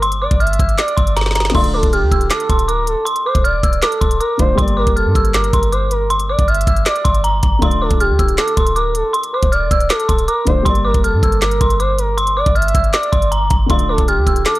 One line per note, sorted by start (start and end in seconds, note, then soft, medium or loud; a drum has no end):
0.00 0.28 G1 loud
0.00 1.49 G3 medium
0.00 1.51 A#3 medium
0.00 1.50 G4 medium
0.00 1.52 D5 medium
0.00 0.19 C6 loud
0.00 closed hi-hat medium
0.12 closed hi-hat medium
0.22 0.40 D5 medium
0.22 0.38 D6 medium
0.31 0.58 G1 loud
0.31 kick loud
0.31 closed hi-hat medium
0.40 0.76 E5 medium
0.40 0.57 F6 medium
0.40 closed hi-hat soft
0.47 closed hi-hat medium
0.53 closed hi-hat medium
0.59 0.78 G1 loud
0.59 0.76 E6 medium
0.59 kick medium
0.59 closed hi-hat medium
0.69 closed hi-hat medium
0.78 1.14 D5 loud
0.78 0.95 D6 medium
0.78 snare loud
0.78 clap loud
0.78 closed hi-hat loud
0.88 closed hi-hat medium
0.97 1.52 G1 loud
0.97 1.14 C6 medium
0.97 kick medium
0.97 closed hi-hat medium
1.07 closed hi-hat medium
1.16 1.33 A#5 medium
1.16 snare medium
1.16 closed hi-hat medium
1.21 snare medium
1.26 snare medium
1.31 snare medium
1.35 1.52 A#5 medium
1.35 snare loud
1.35 closed hi-hat medium
1.40 snare medium
1.45 snare loud
1.50 4.34 D3 medium
1.50 4.35 A3 medium
1.50 snare loud
1.55 1.82 D1 loud
1.55 4.36 F4 medium
1.55 4.37 D5 medium
1.55 1.71 C6 loud
1.55 kick loud
1.55 crash medium
1.64 closed hi-hat medium
1.74 1.92 A4 medium
1.74 1.90 D6 medium
1.83 2.04 D1 loud
1.83 kick medium
1.83 closed hi-hat medium
1.93 2.28 G4 medium
1.93 2.09 F6 medium
1.93 closed hi-hat medium
2.02 2.11 D2 loud
2.12 2.30 D1 loud
2.12 2.28 E6 medium
2.12 kick loud
2.12 closed hi-hat medium
2.21 closed hi-hat medium
2.30 2.66 A4 medium
2.30 2.47 D6 medium
2.30 snare loud
2.30 clap loud
2.30 closed hi-hat loud
2.40 closed hi-hat medium
2.50 2.95 D1 loud
2.50 2.66 C6 medium
2.50 kick loud
2.50 closed hi-hat medium
2.59 closed hi-hat medium
2.68 2.87 A#4 medium
2.68 3.04 D6 medium
2.68 closed hi-hat medium
2.87 3.06 A4 medium
2.87 closed hi-hat medium
3.05 3.22 C6 loud
3.05 closed hi-hat medium
3.16 closed hi-hat medium
3.25 3.44 C5 medium
3.25 3.42 D6 medium
3.35 3.55 D1 loud
3.35 kick medium
3.35 closed hi-hat medium
3.44 3.80 D5 medium
3.44 3.61 F6 medium
3.44 closed hi-hat medium
3.54 3.63 E1 loud
3.63 3.82 D1 loud
3.63 3.80 E6 medium
3.63 kick loud
3.63 closed hi-hat medium
3.73 closed hi-hat medium
3.82 4.18 A4 medium
3.82 3.99 D6 loud
3.82 snare loud
3.82 clap loud
3.82 closed hi-hat loud
3.92 closed hi-hat medium
4.01 4.20 D1 loud
4.01 4.18 C6 medium
4.01 kick loud
4.01 closed hi-hat medium
4.11 closed hi-hat medium
4.20 4.38 A#4 medium
4.20 4.56 D6 medium
4.20 closed hi-hat medium
4.38 4.58 D1 loud
4.38 4.58 D3 medium
4.38 4.58 A3 soft
4.38 4.59 F4 medium
4.38 4.58 C5 medium
4.38 4.59 D5 medium
4.38 kick loud
4.38 closed hi-hat medium
4.55 4.86 G1 loud
4.55 7.57 G3 medium
4.55 7.58 G4 medium
4.55 4.74 C6 loud
4.55 kick loud
4.55 closed hi-hat medium
4.60 7.59 A#3 medium
4.60 7.60 D5 medium
4.68 closed hi-hat medium
4.77 4.95 A#4 medium
4.77 4.94 D6 medium
4.87 5.07 F1 loud
4.87 kick medium
4.87 closed hi-hat medium
4.96 5.32 A4 medium
4.96 5.13 F6 medium
4.96 closed hi-hat medium
5.06 5.15 G2 loud
5.15 5.52 G1 loud
5.15 5.32 E6 medium
5.15 kick medium
5.15 closed hi-hat medium
5.25 closed hi-hat medium
5.34 5.70 A#4 loud
5.34 5.51 D6 medium
5.34 snare loud
5.34 clap loud
5.34 closed hi-hat loud
5.44 closed hi-hat medium
5.53 6.35 G1 loud
5.53 5.70 C6 medium
5.53 kick medium
5.53 closed hi-hat loud
5.63 closed hi-hat medium
5.72 5.90 C5 medium
5.72 6.08 D6 medium
5.72 closed hi-hat medium
5.91 6.09 A#4 medium
5.91 closed hi-hat medium
6.10 6.27 C6 loud
6.10 closed hi-hat medium
6.20 closed hi-hat medium
6.29 6.47 D5 medium
6.29 6.46 D6 medium
6.39 6.66 G1 loud
6.39 kick medium
6.39 closed hi-hat medium
6.48 6.84 E5 medium
6.48 6.65 F6 medium
6.48 closed hi-hat soft
6.55 closed hi-hat medium
6.61 closed hi-hat medium
6.67 6.85 G1 loud
6.67 6.84 E6 medium
6.67 kick medium
6.67 closed hi-hat medium
6.76 closed hi-hat medium
6.86 7.22 D5 loud
6.86 7.02 D6 medium
6.86 snare loud
6.86 clap loud
6.86 closed hi-hat loud
6.96 closed hi-hat medium
7.05 7.42 G1 loud
7.05 7.21 C6 medium
7.05 kick medium
7.05 closed hi-hat medium
7.15 closed hi-hat medium
7.24 7.41 A#5 medium
7.24 closed hi-hat medium
7.43 7.61 G1 loud
7.43 7.60 A#5 medium
7.43 kick loud
7.43 closed hi-hat medium
7.59 7.89 D1 loud
7.59 10.41 D3 medium
7.59 10.42 A3 medium
7.59 7.79 C6 loud
7.59 kick loud
7.59 closed hi-hat medium
7.63 10.43 F4 medium
7.63 10.44 D5 medium
7.71 closed hi-hat medium
7.81 7.99 A4 medium
7.81 7.98 D6 medium
7.91 8.11 D1 loud
7.91 kick loud
7.91 closed hi-hat medium
8.00 8.36 G4 medium
8.00 8.17 F6 medium
8.00 closed hi-hat medium
8.10 8.19 D2 loud
8.19 8.37 D1 loud
8.19 8.36 E6 medium
8.19 kick medium
8.19 closed hi-hat medium
8.29 closed hi-hat medium
8.38 8.74 A4 medium
8.38 8.55 D6 medium
8.38 snare loud
8.38 clap loud
8.38 closed hi-hat loud
8.48 closed hi-hat medium
8.57 9.03 D1 loud
8.57 8.74 C6 medium
8.57 kick loud
8.57 closed hi-hat medium
8.67 closed hi-hat medium
8.76 8.94 A#4 medium
8.76 9.12 D6 medium
8.76 closed hi-hat medium
8.95 9.13 A4 medium
8.95 closed hi-hat medium
9.13 9.30 C6 medium
9.13 closed hi-hat medium
9.23 closed hi-hat medium
9.33 9.51 C5 medium
9.33 9.50 D6 medium
9.43 9.63 D1 loud
9.43 kick medium
9.43 closed hi-hat medium
9.52 9.88 D5 medium
9.52 9.69 F6 medium
9.52 closed hi-hat medium
9.62 9.71 E1 loud
9.71 9.89 D1 loud
9.71 9.88 E6 medium
9.71 kick loud
9.71 closed hi-hat medium
9.80 closed hi-hat medium
9.90 10.26 A4 medium
9.90 10.07 D6 loud
9.90 snare loud
9.90 clap loud
9.90 closed hi-hat loud
10.00 closed hi-hat medium
10.08 10.27 D1 loud
10.08 10.25 C6 medium
10.08 kick medium
10.08 closed hi-hat medium
10.19 closed hi-hat medium
10.28 10.46 A#4 medium
10.28 10.64 D6 medium
10.28 closed hi-hat medium
10.45 10.65 D1 loud
10.45 10.65 D3 medium
10.45 10.66 A3 soft
10.45 10.66 F4 soft
10.45 10.65 C5 medium
10.45 10.67 D5 medium
10.45 kick loud
10.45 closed hi-hat medium
10.63 10.93 G1 loud
10.63 13.64 G3 medium
10.63 13.65 G4 medium
10.63 10.82 C6 loud
10.63 kick loud
10.63 closed hi-hat medium
10.67 13.66 A#3 medium
10.67 13.67 D5 medium
10.75 closed hi-hat medium
10.85 11.03 A#4 medium
10.85 11.01 D6 medium
10.94 11.15 F1 loud
10.94 kick medium
10.94 closed hi-hat medium
11.04 11.40 A4 medium
11.04 11.20 F6 medium
11.04 closed hi-hat medium
11.13 11.22 G2 loud
11.23 11.59 G1 loud
11.23 11.40 E6 medium
11.23 kick loud
11.23 closed hi-hat medium
11.32 closed hi-hat medium
11.42 11.78 A#4 loud
11.42 11.58 D6 medium
11.42 snare loud
11.42 clap loud
11.42 closed hi-hat loud
11.51 closed hi-hat medium
11.61 12.43 G1 loud
11.61 11.77 C6 medium
11.61 kick medium
11.61 closed hi-hat medium
11.70 closed hi-hat medium
11.80 11.98 C5 medium
11.80 12.16 D6 medium
11.80 closed hi-hat medium
11.99 12.17 A#4 medium
11.99 closed hi-hat medium
12.18 12.34 C6 loud
12.18 closed hi-hat medium
12.27 closed hi-hat medium
12.37 12.55 D5 medium
12.37 12.53 D6 medium
12.46 12.74 G1 loud
12.46 kick loud
12.46 closed hi-hat medium
12.55 12.91 E5 loud
12.55 12.72 F6 medium
12.55 closed hi-hat soft
12.62 closed hi-hat medium
12.68 closed hi-hat medium
12.75 12.93 G1 loud
12.75 12.91 E6 medium
12.75 kick loud
12.75 closed hi-hat medium
12.84 closed hi-hat medium
12.93 13.30 D5 loud
12.93 13.10 D6 medium
12.93 snare loud
12.93 clap loud
12.93 closed hi-hat loud
13.03 closed hi-hat medium
13.12 13.49 G1 loud
13.12 13.29 C6 medium
13.12 kick medium
13.12 closed hi-hat medium
13.22 closed hi-hat medium
13.32 13.48 A#5 medium
13.32 closed hi-hat medium
13.50 13.69 G1 loud
13.50 13.67 A#5 medium
13.50 kick loud
13.50 closed hi-hat medium
13.66 13.97 D1 loud
13.66 14.59 D3 medium
13.66 14.59 A3 medium
13.66 13.86 C6 loud
13.66 kick loud
13.66 closed hi-hat medium
13.71 14.59 F4 medium
13.71 14.59 D5 medium
13.79 closed hi-hat medium
13.89 14.07 A4 medium
13.89 14.06 D6 medium
13.98 14.19 D1 loud
13.98 kick medium
13.98 closed hi-hat medium
14.08 14.43 G4 medium
14.08 14.25 F6 medium
14.08 closed hi-hat medium
14.17 14.26 D2 loud
14.27 14.45 D1 loud
14.27 14.43 E6 medium
14.27 kick medium
14.27 closed hi-hat medium
14.36 closed hi-hat medium
14.46 14.59 A4 medium
14.46 14.59 D6 medium
14.46 snare loud
14.46 clap loud
14.46 closed hi-hat loud
14.55 closed hi-hat medium